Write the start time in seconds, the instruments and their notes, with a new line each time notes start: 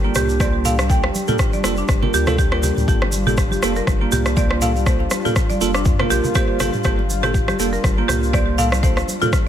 Already playing: analog synth pad G3 D4 G4
0.04 tine electric piano A#3 F4 A#4
0.15 sub bass C2, marimba G4, cross-stick, mid tom, muted conga, low conga, shaker
0.29 shaker
0.40 tine electric piano A#3 F4 C5, marimba D5, kick, cross-stick, muted conga, high conga, shaker
0.65 tine electric piano A#3 F4 A4, marimba F5, mid tom, shaker
0.79 cross-stick, muted conga, shaker
0.90 tine electric piano A#3 F4 A4, marimba G5, kick, shaker
1.04 cross-stick, muted conga
1.15 high conga, shaker
1.28 tine electric piano A#3 F4 A4, marimba F4, mid tom, muted conga, low conga, shaker
1.39 kick, cross-stick, shaker
1.53 marimba D5, high conga, shaker
1.64 sub bass F1, tine electric piano A#3 F4 A4, cross-stick, muted conga, shaker
1.77 marimba D4, shaker
1.88 sub bass G1, kick, cross-stick, muted conga, shaker
2.02 tine electric piano A#3 F4 A#4, low conga
2.14 sub bass D2, marimba G4, muted conga, shaker
2.27 tine electric piano A#3 F4 A4, cross-stick, high conga, low conga, shaker
2.38 marimba G4, kick, muted conga, shaker
2.52 tine electric piano A#3 F4 A#4, cross-stick
2.63 marimba G4, low conga, shaker
2.77 sub bass D2, mid tom, muted conga, shaker
2.88 sub bass G1, tine electric piano A#3 F4 A4, analog synth pad F4, marimba G4, kick, shaker
3.02 cross-stick, muted conga
3.12 high conga, shaker
3.27 tine electric piano A#3 F4 A4, marimba G4, mid tom, muted conga, low conga, shaker
3.37 kick, cross-stick, shaker
3.51 marimba G4, high conga, shaker
3.62 sub bass F1, tine electric piano A#3 F4 A4, cross-stick, muted conga, shaker
3.76 marimba A#4, shaker
3.87 sub bass G1, kick, cross-stick, muted conga, high conga, shaker
4.01 tine electric piano A#3 F4 A#4
4.12 sub bass C2, marimba G4, mid tom, muted conga, low conga, shaker
4.26 cross-stick, shaker
4.37 tine electric piano A#3 F4 C5, marimba D5, kick, muted conga, high conga, shaker
4.51 cross-stick
4.62 tine electric piano A#3 F4 A4, marimba F5, mid tom, shaker
4.76 muted conga, shaker
4.86 tine electric piano A#3 F4 A4, marimba C5, kick, cross-stick, shaker
5.00 muted conga
5.11 cross-stick, high conga, shaker
5.25 tine electric piano A#3 F4 A4, marimba F4, mid tom, muted conga, low conga, shaker
5.36 kick, cross-stick, shaker
5.50 marimba D5, high conga, shaker
5.61 sub bass F1, tine electric piano A#3 F4 A4, muted conga, shaker
5.74 marimba D4, cross-stick, shaker
5.85 sub bass G2, kick, muted conga, shaker
5.99 tine electric piano A#3 F4 A#4, cross-stick, low conga
6.10 sub bass A#1, marimba G4, muted conga, shaker
6.24 low conga, shaker
6.35 tine electric piano A#3 F4 C5, marimba G4, kick, cross-stick, muted conga, shaker
6.60 sub bass G1, tine electric piano A#3 F4 A4, marimba G4, cross-stick, low conga, shaker
6.73 mid tom, muted conga, shaker
6.84 sub bass G1, tine electric piano A#3 F4 A4, marimba G4, kick, cross-stick, shaker
6.99 muted conga
7.10 high conga, shaker
7.23 tine electric piano A#3 F4 A4, marimba G4, cross-stick, mid tom, muted conga, low conga, shaker
7.34 kick, shaker
7.48 marimba G4, cross-stick, high conga, shaker
7.59 sub bass F1, tine electric piano A#3 F4 A4, muted conga, shaker
7.73 marimba A#4, shaker
7.84 sub bass G1, kick, cross-stick, muted conga, high conga, shaker
7.98 tine electric piano A#3 F4 A#4
8.08 sub bass C2, marimba G4, cross-stick, mid tom, muted conga, low conga, shaker
8.23 shaker
8.33 tine electric piano A#3 F4 C5, marimba D5, kick, cross-stick, muted conga, high conga, shaker
8.58 tine electric piano A#3 F4 A4, marimba F5, mid tom, shaker
8.72 cross-stick, muted conga, shaker
8.83 tine electric piano A#3 F4 A4, marimba C5, kick, shaker
8.97 cross-stick, muted conga, shaker
9.08 high conga, shaker
9.21 tine electric piano A#3 F4 A4, marimba F4, mid tom, muted conga, low conga, shaker
9.33 kick, cross-stick, shaker